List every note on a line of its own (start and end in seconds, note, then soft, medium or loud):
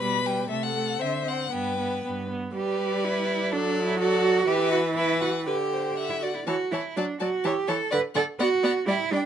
0.00 0.43 B2 medium
0.00 0.24 G3 medium
0.00 0.49 B4 medium
0.00 0.28 B5 medium
0.25 0.48 G3 soft
0.25 0.50 G5 medium
0.49 0.94 C3 medium
0.49 0.74 A3 soft
0.49 1.01 A4 medium
0.49 0.64 E5 medium
0.63 1.03 F#5 medium
0.74 0.99 A3 soft
0.99 1.46 D3 medium
0.99 1.24 C4 soft
0.99 1.51 C5 medium
0.99 1.30 E5 medium
1.25 1.50 C4 soft
1.25 1.54 F#5 medium
1.51 1.98 G2 medium
1.51 1.77 B3 soft
1.51 2.29 B4 medium
1.51 2.04 G5 medium
1.78 2.03 B3 soft
2.04 2.49 G2 medium
2.04 2.29 B3 soft
2.29 2.54 B3 soft
2.55 3.54 G3 medium
2.55 3.06 G4 medium
2.55 3.53 B4 medium
2.55 3.50 D5 medium
3.04 3.54 E4 medium
3.51 4.47 F#3 medium
3.51 3.84 D4 medium
3.51 3.99 A4 medium
3.51 3.99 D5 medium
3.85 3.99 E4 medium
4.00 4.49 F#4 loud
4.00 4.46 A4 medium
4.00 4.47 D5 medium
4.46 5.48 E3 medium
4.46 4.71 G4 loud
4.46 4.92 B4 medium
4.46 4.93 E5 medium
4.72 4.80 F#4 medium
4.96 5.20 E4 medium
4.96 5.45 B4 medium
4.96 5.22 E5 medium
5.20 5.28 F#4 medium
5.20 5.46 F#5 medium
5.45 6.27 D3 medium
5.45 5.95 G4 medium
5.45 5.55 B4 soft
5.45 5.98 G5 medium
5.72 5.96 C5 soft
5.97 6.24 E5 medium
5.97 6.26 F#5 soft
6.10 6.15 E4 medium
6.22 6.34 F#4 medium
6.22 6.47 D5 medium
6.35 6.40 E4 medium
6.46 6.55 E3 medium
6.46 6.73 F#4 medium
6.46 6.56 C#5 medium
6.46 6.55 A5 medium
6.71 6.79 E3 medium
6.71 6.98 E4 medium
6.71 6.80 C#5 medium
6.71 6.82 A5 soft
6.96 7.05 F#3 medium
6.96 7.20 D4 medium
6.96 7.05 D5 medium
6.96 7.05 A5 medium
7.20 7.29 F#3 medium
7.20 7.46 F#4 medium
7.20 7.29 D5 medium
7.20 7.28 A5 soft
7.44 7.53 E3 medium
7.44 7.70 G4 medium
7.44 7.54 C#5 medium
7.44 7.52 A5 medium
7.68 7.77 E3 medium
7.68 7.91 A4 medium
7.68 7.76 C#5 medium
7.68 7.76 A5 medium
7.91 8.00 D3 medium
7.91 8.00 B4 loud
7.91 7.99 D5 medium
7.91 8.00 F#5 medium
8.15 8.23 D3 medium
8.15 8.24 A4 loud
8.15 8.23 D5 medium
8.15 8.23 F#5 medium
8.39 8.47 B3 medium
8.39 8.87 F#4 loud
8.39 8.48 D5 medium
8.39 8.48 F#5 medium
8.63 8.71 B3 medium
8.63 8.71 D5 medium
8.63 8.73 F#5 medium
8.87 8.95 G3 medium
8.87 9.14 E4 loud
8.87 8.96 D5 medium
8.87 8.97 G5 medium
9.11 9.19 G3 medium
9.11 9.26 D4 medium
9.11 9.21 D5 medium
9.16 9.24 G5 medium